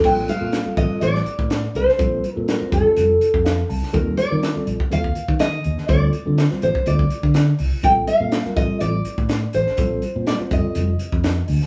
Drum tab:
CC |x---------------|----------------|----------------|----------------|
HH |--x-x-x-x-x-x-x-|x-x-x-x-x-x-x-o-|x-x-x-x-x-x-x-x-|x-x-x-x-x-x-x-o-|
SD |----o----o--o--o|----o-------o--o|----o-------o--o|----oo------o---|
BD |o-----o----o----|o-----o----o----|o------o-o-o----|o------o-o-o----|

CC |----------------|----------------|
HH |x-x-x-x-x-x-x-x-|x-x-x-x-x-x-x-o-|
SD |----oo------o--o|----o-------o--o|
BD |o-----o----o----|o-----o----o----|